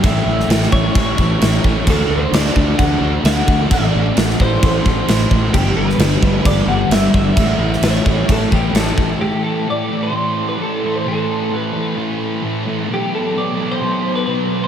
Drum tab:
CC |x---x---x---x---|x---x---x---x---|x---x---x---x---|x---x---x---x---|
SD |---ooo------o---|----oo------o---|----oo------o---|---oo-------o---|
BD |o-----o-o-o---o-|o-----o-o-----o-|o-----o-o-o---o-|o-----o-o-----o-|

CC |x---x---x---x---|----------------|----------------|----------------|
SD |---oo-------o---|----------------|----------------|----------------|
BD |o-----o-o-o---o-|----------------|----------------|----------------|